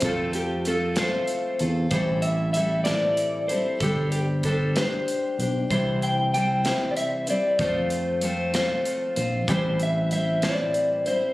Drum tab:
HH |xxxxxx|xxxxxx|xxxxxx|xxxxxx|
SD |---o--|---o--|---o--|---o--|
BD |o-----|o-----|o-o---|o-----|

HH |xxxxxx|xxxxxx|
SD |---o--|---o--|
BD |o-----|o-----|